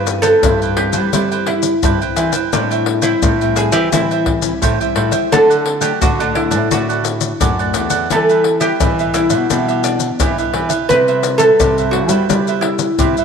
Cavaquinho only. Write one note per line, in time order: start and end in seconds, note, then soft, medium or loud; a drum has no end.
0.07 muted cavaquinho stroke soft
0.23 0.41 B4 medium
0.23 0.41 C5 medium
0.23 0.40 G5 medium
0.43 0.59 E4 soft
0.43 0.60 B4 soft
0.43 0.60 C5 soft
0.43 0.60 G5 medium
0.62 0.93 B4 medium
0.62 0.94 C5 medium
0.62 0.92 G5 medium
0.93 1.11 B4 medium
0.93 1.11 C5 medium
0.93 1.11 G5 medium
1.13 1.29 E4 medium
1.13 1.30 B4 medium
1.13 1.30 C5 medium
1.13 1.30 G5 soft
1.32 1.47 B4 medium
1.32 1.46 C5 soft
1.32 1.47 G5 medium
1.47 muted cavaquinho stroke soft
1.83 1.99 E4 medium
1.83 2.00 B4 medium
1.83 1.99 C5 medium
1.83 2.00 G5 medium
2.01 2.17 B4 medium
2.01 2.16 C5 medium
2.01 2.17 G5 medium
2.17 2.33 E4 soft
2.17 2.32 B4 soft
2.17 2.33 C5 soft
2.17 2.31 G5 medium
2.32 2.50 B4 medium
2.32 2.51 C5 medium
2.32 2.50 G5 medium
2.53 2.69 A4 soft
2.53 2.69 C5 soft
2.53 2.69 E5 soft
2.53 2.69 G5 soft
2.71 2.85 C5 medium
2.71 2.86 E5 medium
2.71 2.86 G5 medium
2.86 muted cavaquinho stroke soft
3.02 3.20 C5 medium
3.02 3.20 E5 medium
3.02 3.20 G5 medium
3.23 3.39 A4 soft
3.23 3.39 C5 medium
3.23 3.39 E5 medium
3.23 3.39 G5 soft
3.41 3.73 C5 soft
3.41 3.72 E5 medium
3.41 3.71 G5 medium
3.72 3.91 C5 medium
3.72 3.90 E5 medium
3.72 3.90 G5 medium
3.93 4.09 A4 soft
3.93 4.09 C5 soft
3.93 4.09 E5 medium
3.93 4.09 G5 medium
4.11 4.25 C5 medium
4.11 4.26 E5 medium
4.11 4.26 G5 medium
4.26 muted cavaquinho stroke soft
4.62 4.78 A4 medium
4.62 4.78 C5 medium
4.62 4.79 E5 medium
4.62 4.79 G5 medium
4.80 4.95 C5 medium
4.80 4.95 E5 medium
4.80 4.96 G5 medium
4.95 5.12 A4 soft
4.95 5.12 C5 soft
4.95 5.11 E5 soft
4.95 5.10 G5 medium
5.12 5.30 C5 medium
5.12 5.29 E5 medium
5.12 5.29 G5 medium
5.32 5.48 D4 soft
5.32 5.48 A4 soft
5.32 5.48 D5 medium
5.32 5.49 F#5 soft
5.50 5.64 A4 medium
5.50 5.64 D5 medium
5.50 5.64 F#5 medium
5.65 muted cavaquinho stroke soft
5.81 5.99 A4 medium
5.81 5.99 D5 medium
5.81 5.99 F#5 medium
6.01 6.18 D4 soft
6.01 6.18 A4 soft
6.01 6.18 D5 medium
6.01 6.18 F#5 soft
6.19 6.51 A4 soft
6.19 6.50 D5 soft
6.19 6.49 F#5 medium
6.51 6.69 A4 medium
6.51 6.69 D5 medium
6.51 6.68 F#5 medium
6.71 6.87 D4 soft
6.71 6.88 A4 medium
6.71 6.88 D5 soft
6.71 6.88 F#5 medium
6.89 7.03 A4 soft
6.89 7.03 D5 medium
6.89 7.04 F#5 medium
7.04 muted cavaquinho stroke soft
7.40 7.57 D4 medium
7.40 7.57 A4 medium
7.40 7.58 D5 medium
7.40 7.58 F#5 medium
7.59 7.73 A4 medium
7.59 7.74 D5 medium
7.59 7.74 F#5 medium
7.74 7.91 D4 soft
7.74 7.91 A4 soft
7.74 7.90 D5 soft
7.74 7.89 F#5 medium
7.90 8.09 A4 soft
7.90 8.08 D5 medium
7.90 8.08 F#5 medium
8.11 8.27 E4 soft
8.11 8.27 G4 soft
8.11 8.27 B4 soft
8.11 8.28 E5 medium
8.29 8.44 G4 medium
8.29 8.44 B4 medium
8.29 8.44 E5 medium
8.44 muted cavaquinho stroke soft
8.60 8.79 G4 soft
8.60 8.78 B4 medium
8.60 8.78 E5 medium
8.80 8.97 E4 soft
8.80 8.97 G4 soft
8.80 8.97 B4 soft
8.80 8.97 E5 medium
9.00 9.31 G4 soft
9.00 9.30 B4 medium
9.00 9.29 E5 medium
9.30 9.49 G4 medium
9.30 9.48 B4 medium
9.30 9.48 E5 medium
9.51 9.67 E4 soft
9.51 9.67 G4 soft
9.51 9.67 B4 soft
9.51 9.67 E5 medium
9.68 9.83 G4 medium
9.68 9.83 B4 medium
9.68 9.84 E5 medium
9.84 muted cavaquinho stroke soft
10.20 10.36 E4 medium
10.20 10.36 G4 medium
10.20 10.37 B4 medium
10.20 10.37 E5 medium
10.38 10.52 G4 medium
10.38 10.53 B4 medium
10.38 10.54 E5 medium
10.53 10.70 E4 soft
10.53 10.70 G4 soft
10.53 10.69 B4 soft
10.53 10.68 E5 soft
10.69 10.88 G4 medium
10.69 10.87 B4 medium
10.69 10.87 E5 medium
10.89 11.06 G4 soft
10.89 11.06 B4 soft
10.89 11.06 C5 soft
10.89 11.07 E5 soft
11.08 11.23 B4 medium
11.08 11.22 C5 medium
11.08 11.23 E5 medium
11.23 muted cavaquinho stroke soft
11.39 11.57 B4 medium
11.39 11.58 C5 medium
11.39 11.57 E5 medium
11.60 11.76 G4 soft
11.60 11.76 B4 soft
11.60 11.76 C5 soft
11.60 11.76 E5 medium
11.79 12.09 B4 medium
11.79 12.10 C5 soft
11.79 12.08 E5 medium
12.10 12.27 B4 medium
12.10 12.27 C5 medium
12.10 12.27 E5 medium
12.30 12.45 G4 soft
12.30 12.46 B4 medium
12.30 12.45 C5 soft
12.30 12.46 E5 medium
12.48 12.63 B4 medium
12.48 12.62 C5 medium
12.48 12.63 E5 medium
12.63 muted cavaquinho stroke soft
12.99 13.15 G4 medium
12.99 13.16 B4 medium
12.99 13.15 C5 medium
12.99 13.16 E5 medium
13.18 13.25 B4 medium
13.18 13.25 C5 soft
13.18 13.25 E5 medium